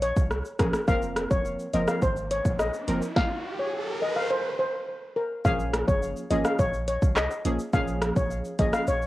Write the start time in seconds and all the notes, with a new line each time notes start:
Already playing: A#1
0.02 C#5, closed hi-hat, shaker
0.16 C2, kick, shaker
0.31 cross-stick, shaker
0.45 shaker
0.59 A#1 F3 A#3 C#4 G#4 A#4, kick, cross-stick, closed hi-hat, shaker
0.73 cross-stick, shaker
0.88 F1 F3 A#3 C4 A#4 F5, kick, riser, shaker
1.02 shaker
1.16 cross-stick, closed hi-hat, shaker
1.31 F1 C#5, kick, shaker
1.45 shaker
1.59 shaker
1.73 F#1 F3 A#3 C4 A#4 D#5, closed hi-hat, shaker
1.88 F5, cross-stick, shaker
2.02 G#1 C5, kick, shaker
2.17 shaker
2.31 C#5, closed hi-hat, shaker
2.45 A#1, kick, shaker
2.59 D#5, cross-stick, shaker
2.74 shaker
2.88 F#1 F3 A#3 C4 A#4, closed hi-hat, shaker
3.02 shaker
3.16 F5, kick, snare
3.59 C#5
4.02 D#5
4.16 F5
4.31 C5
4.59 C5
5.16 A#4
5.45 A#1 F3 A#3 C#4 G#4 F5, kick, shaker
5.59 shaker
5.73 cross-stick, closed hi-hat, shaker
5.88 F#1 C#5, kick, shaker
6.03 shaker
6.17 shaker
6.31 G#1 F3 A#3 C#4 G#4 D#5, closed hi-hat, shaker
6.45 F5, cross-stick, shaker
6.59 A#1 C#5, kick, shaker
6.74 shaker
6.88 C#5, closed hi-hat, shaker
7.02 C2, kick, shaker
7.16 D#5, cross-stick, clap, shaker
7.31 shaker
7.45 A#1 F3 A#3 C#4 G#4, closed hi-hat, shaker
7.59 shaker
7.73 A#1 F3 A#3 C#4 G#4 F5, kick, shaker
7.88 shaker
8.02 cross-stick, closed hi-hat, shaker
8.17 A#1 C#5, kick, shaker
8.31 shaker
8.45 shaker
8.59 G#1 F3 A#3 C#4 G#4 D#5, kick, closed hi-hat, shaker
8.73 F5, cross-stick, shaker
8.88 A#1 C#5, shaker
9.02 shaker